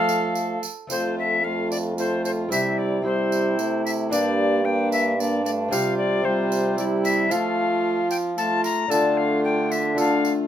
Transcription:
Already playing: F3 A3 C4 F4 A4 F5
0.09 tambourine
0.35 tambourine
0.63 tambourine
0.87 F2 A3 C4 F4 C5, tambourine
0.91 F2
1.18 E5
1.44 A3 F4 F5
1.71 D5, tambourine
1.96 A3 F4 C5, tambourine
2.25 C5, tambourine
2.49 C3 G3 C4 E4 G4 E5, tambourine
2.78 D5
3.02 G3 C4 E4 G4 C5
3.32 tambourine
3.58 A3, tambourine
3.85 E5, tambourine
4.09 G2 A#3 D4 G4 D5, tambourine
4.64 A#3 D4 G5
4.92 E5, tambourine
5.18 A#3 D4 D5, tambourine
5.44 A3 D5, tambourine
5.68 C3 G3 C4 F4 G4 F5
5.73 F4, tambourine
5.97 D5
6.22 G3 C4 F4 G4 C5
6.26 F4
6.52 tambourine
6.75 G3 C4 E4 G4 D5, tambourine
7.04 E5, tambourine
7.28 F3 A3 C4 F4 A4 F5, tambourine
7.32 F4
8.11 G5, tambourine
8.38 A3 F4 A5, tambourine
8.64 A#5, tambourine
8.88 D3 A3 D4 F4 A4 A5, tambourine
9.17 F5
9.44 G5
9.71 E5, tambourine
9.95 A3 D4 F4 A4, tambourine
10.00 F5
10.25 tambourine

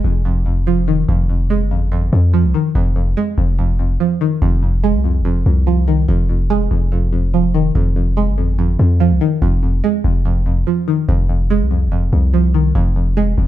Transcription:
Already playing: G#3
0.04 F1 F2
0.25 F2
0.46 F2
0.67 F3
0.88 D#3
1.09 F1 F2
1.29 F2
1.50 G#3
1.61 G1
1.71 F2
1.92 F2
2.13 F2
2.34 F3
2.45 C2
2.54 D#3
2.75 F1 F2
2.96 F2
3.17 G#3
3.38 F1 F2
3.59 F2
3.79 F2
4.00 F3
4.21 D#3
4.42 F1 F2
4.63 F2
4.84 G#3
4.95 C2
5.04 F2
5.20 F1
5.25 F2
5.46 C2 F2
5.67 F3
5.88 D#3
6.08 F1 F2
6.29 F2
6.50 G#3
6.71 F1 F2
6.92 F2
7.13 F2
7.34 F3
7.54 D#3
7.75 F1 F2
7.96 F2
8.17 G#3
8.28 G1
8.38 F2
8.59 F2
8.79 F2
9.00 F3
9.11 C2
9.21 D#3
9.42 F1 F2
9.63 F2
9.84 G#3
10.04 F1 F2
10.25 F2
10.46 F2
10.67 F3
10.88 D#3
11.09 F1 F2
11.29 F2
11.50 G#3
11.61 C2
11.71 F2
11.87 F1
11.92 F2
12.13 C2 F2
12.34 F3
12.54 D#3
12.75 F1 F2
12.96 F2
13.17 G#3
13.38 F1 F2

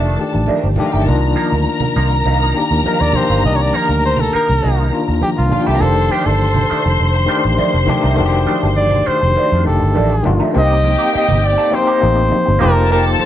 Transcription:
Already playing: F1 D#3 A3 D4 F4 G4 A4 A5
0.02 muted conga
0.17 D#3 A3 D4 G4, muted clean electric guitar stroke
0.33 A1, muted clean electric guitar stroke
0.47 D#3 A3 D4, muted fingered electric bass stroke, muted conga, high conga
0.55 A#3 A#4
0.62 G1 C4 C5
0.70 D4 D5
0.76 D#3 A3 D4 D#4 G4 D#5, muted clean electric guitar stroke, high conga, low conga
0.85 F4 F5
0.92 G1 D#3 A3 D#4 G4 G5
1.00 A4 A5
1.06 C2 D#3 A#3 D4 F4 A#4 A#5, muted conga, low conga
1.35 F3 A#3 D#4, high conga
1.52 D2
1.80 muted clean electric guitar stroke, muted conga, low conga
1.96 C2 F3 A#3 D#4
2.12 muted clean electric guitar stroke
2.25 C2 F3 A#3 D#4, muted conga
2.54 D#3 A#3 D4 G4, muted clean electric guitar stroke
2.71 D#2, muted clean electric guitar stroke
2.84 F3 A#3 D#4 A#4, muted fingered electric bass stroke, muted conga, high conga
2.99 D#2 D5, muted conga
3.13 D#3 A#3 D4 G4 C5, muted clean electric guitar stroke, high conga, low conga
3.30 G1 F3 A#3 F4
3.43 C2 D#3 A#3 D4 G4 D#5, low conga
3.56 C#5, muted conga
3.62 D5
3.73 F3 A#3 D#4 A#4, high conga
3.89 D2
4.02 C5, muted conga
4.17 A4, muted clean electric guitar stroke, muted conga, low conga
4.33 F3 A#3 D#4 A#4, muted fingered electric bass stroke
4.48 C2, muted clean electric guitar stroke
4.62 C2 F3 A#3 D#4, muted conga
4.90 D#3 A#3 D4 F4, muted clean electric guitar stroke
5.08 D#2, muted clean electric guitar stroke
5.21 G4, muted clean electric guitar stroke, muted fingered electric bass stroke, high conga
5.36 C2 F4, muted clean electric guitar stroke, muted conga
5.49 D#3 A#3 D4 F4 F5, high conga, low conga
5.59 G4 G5
5.66 C2 F3 A#3 F4 G4 A4 A5
5.74 A#4 A#5
5.79 F1 D#3 A3 D4 G4 A4 C5 C6, muted conga, low conga
5.96 muted conga
6.11 D#3 A3 D4 G4, high conga
6.26 G1 A4
6.40 muted conga
6.55 muted clean electric guitar stroke, muted conga, low conga
6.70 D#3 A3 D4, muted fingered electric bass stroke
6.85 F1, muted clean electric guitar stroke
6.99 F1, muted clean electric guitar stroke
7.14 muted clean electric guitar stroke, muted conga
7.26 D#3 A3 D4 G4
7.30 D4
7.44 A1, muted clean electric guitar stroke
7.58 D#3 A3 D4, muted fingered electric bass stroke, muted conga, high conga
7.74 F1
7.86 D#3 A3 D4 G4, muted clean electric guitar stroke, high conga, low conga
8.03 C2 D#3 A3 D#4
8.15 F1 D#3 A3 D4 F#4, low conga
8.26 G4
8.32 muted conga
8.47 D#3 A3 D4, high conga
8.63 G1
8.77 D5, muted conga, high conga
8.91 muted clean electric guitar stroke, muted conga, low conga
9.06 D#3 A3 D4 C5, muted fingered electric bass stroke
9.22 F1, muted clean electric guitar stroke
9.36 D#3 A3 D4, muted conga
9.50 F2, muted conga
9.64 F1 D#3 A3 D4 G4 A4, muted clean electric guitar stroke
9.81 G1, muted clean electric guitar stroke
9.95 A1 D#3 A3 D4, high conga
10.10 muted conga
10.23 G1 D#3 A3 D4 F4, muted clean electric guitar stroke, high conga, low conga
10.40 D#3 A3 D#4
10.53 C2 A#3 C4 D4 D#4 G4 C5 G5, muted conga
10.58 D#4 D#5
10.84 muted clean electric guitar stroke, high conga
10.99 A#3 D#4 G4
11.13 A#3 D#4 G4 D#5, muted fingered electric bass stroke
11.29 G1, muted conga, low conga
11.43 D5, muted clean electric guitar stroke
11.58 A#3 D#4 A4
11.71 A#3 C4 D#4 G4 C5, muted clean electric guitar stroke, muted conga
11.87 A#3 D#4 G4
12.01 A1 A#3 C4 D#4 G4 D#5, muted clean electric guitar stroke
12.17 muted clean electric guitar stroke
12.32 muted clean electric guitar stroke, muted fingered electric bass stroke, high conga
12.46 G1, muted clean electric guitar stroke
12.59 F1 A#3 D#4 F4 G4 A4 A#4 C5 A5, high conga, low conga
12.75 muted clean electric guitar stroke
12.90 A#3 D#4 G4 A#4
13.06 muted conga
13.19 C5, muted clean electric guitar stroke, high conga

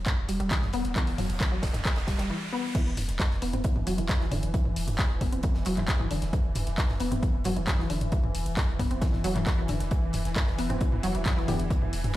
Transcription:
Already playing: riser
0.06 kick, clap, closed hi-hat, mid tom
0.18 E1
0.28 E1 G3, closed hi-hat, open hi-hat
0.40 E1 G3, closed hi-hat
0.50 E3, kick, snare, clap, closed hi-hat
0.62 E1, snare, mid tom
0.73 E1 B3, closed hi-hat, open hi-hat
0.85 E1, closed hi-hat
0.96 E3, kick, clap, closed hi-hat
1.07 E1, open hi-hat
1.18 E1 F#3, mid tom, open hi-hat
1.29 E1, closed hi-hat
1.40 E3, kick, snare, clap, closed hi-hat
1.52 E1 F#3
1.63 E1, kick, snare, closed hi-hat, open hi-hat
1.73 E1, snare, closed hi-hat, mid tom
1.85 kick, snare, clap, closed hi-hat
1.96 E1, snare, closed hi-hat
2.07 E1 G3, kick, snare, closed hi-hat, open hi-hat
2.18 E1 G3, snare, closed hi-hat
2.30 E3
2.53 B3
2.75 E3, kick, closed hi-hat, crash
2.86 E1
2.97 E1, closed hi-hat, mid tom, open hi-hat
3.08 E1, snare, closed hi-hat
3.20 kick, snare, clap, closed hi-hat, mid tom
3.31 E1, snare
3.42 E1 B3, closed hi-hat, open hi-hat
3.53 E1 C4, closed hi-hat, mid tom
3.64 E3, kick, closed hi-hat
3.76 E1, mid tom
3.87 E1 F#3, closed hi-hat, open hi-hat
3.98 E1 E3, closed hi-hat
4.09 kick, snare, clap, closed hi-hat, mid tom
4.20 E1 E3, snare
4.31 E1 D3, closed hi-hat, mid tom, open hi-hat
4.43 E1, closed hi-hat
4.54 E3, kick, closed hi-hat
4.65 E1, mid tom
4.76 E1, open hi-hat
4.88 E1, closed hi-hat, mid tom
4.99 kick, snare, clap, closed hi-hat
5.10 E1
5.21 E1 B3, kick, closed hi-hat, mid tom, open hi-hat
5.32 E1 C4, closed hi-hat
5.43 E3, kick, closed hi-hat, mid tom
5.54 E1, snare
5.65 E1 F#3, closed hi-hat, open hi-hat
5.77 E1 E3, clap, closed hi-hat, mid tom
5.88 kick, snare, clap, closed hi-hat
6.00 E1 E3, mid tom
6.11 E1 D3, closed hi-hat, open hi-hat
6.22 E1, snare, closed hi-hat
6.33 E3, kick, closed hi-hat, mid tom
6.44 E1
6.55 E1, closed hi-hat, mid tom, open hi-hat
6.65 E1, snare, closed hi-hat
6.78 kick, snare, clap, closed hi-hat
6.89 E1, snare, mid tom
7.00 E1 B3, closed hi-hat, open hi-hat
7.12 E1 C4, closed hi-hat, mid tom
7.23 E3, kick, closed hi-hat
7.34 E1
7.44 E1 F#3, closed hi-hat, mid tom, open hi-hat
7.56 E1 E3, closed hi-hat
7.67 kick, snare, clap, closed hi-hat, mid tom
7.79 E1 E3, snare
7.90 E1 D3, closed hi-hat, open hi-hat
8.01 E1, closed hi-hat, mid tom
8.12 E3, kick, closed hi-hat
8.24 E1, mid tom
8.35 E1, open hi-hat
8.46 E1, closed hi-hat
8.57 kick, snare, clap, closed hi-hat, mid tom
8.68 E1
8.79 E1 B3, kick, closed hi-hat, mid tom, open hi-hat
8.91 E1 C4, closed hi-hat
9.01 E3, kick, snare, closed hi-hat
9.13 E1, snare, mid tom
9.24 E1 F#3, closed hi-hat, open hi-hat
9.36 E1 E3, clap, closed hi-hat, mid tom
9.46 kick, snare, clap, closed hi-hat
9.58 E1 E3
9.68 E1 D3, closed hi-hat, mid tom, open hi-hat
9.80 E1, snare, closed hi-hat
9.91 E3, kick, closed hi-hat
10.03 E1
10.13 E1, closed hi-hat, mid tom, open hi-hat
10.25 E1, snare, closed hi-hat
10.36 kick, snare, clap, closed hi-hat, mid tom
10.47 E1, snare
10.58 E1 B3, closed hi-hat, open hi-hat
10.70 E1 C4, closed hi-hat, mid tom
10.81 E3, kick, closed hi-hat
10.92 E1, mid tom
11.03 E1 F#3, closed hi-hat, open hi-hat
11.15 E1 E3, closed hi-hat
11.25 kick, snare, clap, closed hi-hat, mid tom
11.37 E1 E3, snare
11.48 E1 D3 E3 B3 G4, closed hi-hat, mid tom, open hi-hat
11.59 E1, closed hi-hat
11.70 E3, kick, closed hi-hat
11.82 E1, mid tom
11.93 E1, open hi-hat
12.04 E1, closed hi-hat, mid tom

